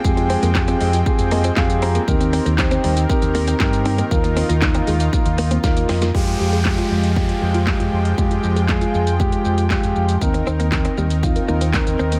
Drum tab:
HH |-xox-xox-xox-xox|-xox-xox-xox-xox|-xox-xox-xox-xox|-x-x-x-x-x-x-x-x|
SH |xxxxxxxxxxxxxxxx|xxxxxxxxxxxxxxxx|xxxxxxxxxxxxxxxx|----------------|
CP |----x-------x---|----x-------x---|----x-----------|----x-------x---|
SD |----o-------o---|----o-------o---|----o-------o-oo|----o-------o---|
BD |o---o---o---o---|o---o---o---o---|o---o---o---o---|o---o---o---o---|

HH |-x-x-x-x-x-x-x-x|-x-x-x-x-x-x-x-x|
SH |xxxxxxxxxxxxxxxx|xxxxxxxxxxxxxxxx|
CP |----x-------x---|----x-------x---|
SD |----o-------o---|----o-------o---|
BD |o---o---o---o---|o---o---o---o---|